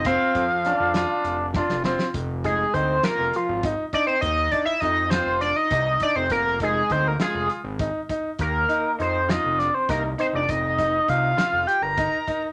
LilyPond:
<<
  \new Staff \with { instrumentName = "Analog synth lead" } { \time 7/8 \key f \dorian \tempo 4 = 101 f''2~ f''8 r4 | r8 aes'8 c''8 bes'8 f'8 r8 d''16 c''16 | ees''8 d''16 e''16 ees''8 c''8 d''16 ees''8. d''16 c''16 | bes'8 aes'8 c''16 bes'16 aes'8 r4. |
bes'4 c''8 ees''8 d''16 c''16 bes'8 c''16 d''16 | ees''4 f''4 g''16 bes''4 r16 | }
  \new Staff \with { instrumentName = "Flugelhorn" } { \time 7/8 \key f \dorian f'8 r8 d'4. f'8 f'8 | r2. r8 | r2. r8 | r2. r8 |
r2. r8 | r2. r8 | }
  \new Staff \with { instrumentName = "Grand piano" } { \time 7/8 \key f \dorian c'4 d'8 f'4 d'8 c'8 | r8 ees'8 ees'8 f'4 ees'8 ees'8 | r8 ees'8 ees'8 f'4 ees'8 ees'8 | r8 ees'8 ees'8 f'4 ees'8 ees'8 |
r8 ees'8 ees'8 f'4 ees'8 ees'8 | r8 ees'8 ees'8 f'4 ees'8 ees'8 | }
  \new Staff \with { instrumentName = "Analog synth bass" } { \clef bass \time 7/8 \key f \dorian f,,16 r16 f,8. f,8 r16 f,,8. f,,8 r16 | f,,4 d,8 r16 f,,16 r16 aes,,8 r8. | ees,8 r8 f,8. f,,8 r16 c,8 r16 f,,16 | f,,4 d,8 r16 f,,16 r16 aes,,8 r8. |
ees,8 r8 f,8. f,,8 r16 c,8 r16 f,,16 | f,,4 c,8 r16 f,,16 r16 g,,8 r8. | }
  \new DrumStaff \with { instrumentName = "Drums" } \drummode { \time 7/8 <hh bd>8 <hh bd>8 <hh sn>8 <hh sn>8 hh8 <bd sn>16 sn16 sn16 sn16 | <hh bd>8 <hh bd>8 <hh bd>8 <hh sn>8 hh8 <hh bd>8 <hh bd>8 | <hh bd>8 <hh bd>8 <hh bd>8 <hh sn>8 <hh sn>8 <hh bd>8 <hh bd>8 | <hh bd>8 <hh bd>8 <hh bd>8 <hh sn>8 hh8 <hh bd>8 <hh bd>8 |
<hh bd>8 hh8 hh8 <hh sn>8 <hh sn>8 <hh bd sn>8 hh8 | <hh bd>8 <hh bd sn>8 <hh bd>8 <hh sn>8 hh8 <hh bd>8 <hh bd>8 | }
>>